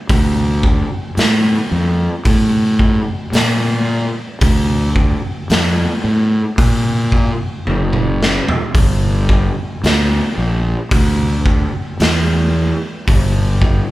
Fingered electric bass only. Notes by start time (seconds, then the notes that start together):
0.10 D2
1.17 A2
1.71 F2
2.26 A2
3.33 A#2
4.41 D2
5.50 F2
6.04 A2
6.58 A#2
7.67 F#1
8.74 G1
9.83 D2
10.37 A#1
10.92 D2
12.00 E2
13.08 G1